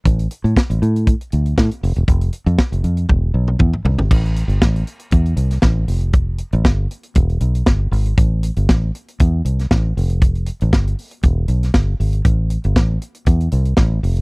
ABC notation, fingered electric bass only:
X:1
M:4/4
L:1/16
Q:1/4=118
K:Ephr
V:1 name="Fingered electric bass" clef=bass
A,,,2 z A,, z A,,, A,,3 z D,,2 A,, z F,,, E,,, | F,,,2 z F,, z F,,, F,,2 E,,,2 B,,,2 E,, z C,, ^G,,, | A,,,3 G,,, A,,,2 z2 E,,2 C,,2 A,,,2 F,,,2- | F,,,3 A,,, G,,,2 z2 E,,,2 B,,,2 G,,,2 ^G,,,2 |
A,,,3 G,,, A,,,2 z2 E,,2 C,,2 A,,,2 F,,,2- | F,,,3 A,,, G,,,2 z2 E,,,2 B,,,2 G,,,2 ^G,,,2 | A,,,3 G,,, A,,,2 z2 E,,2 C,,2 A,,,2 F,,,2 |]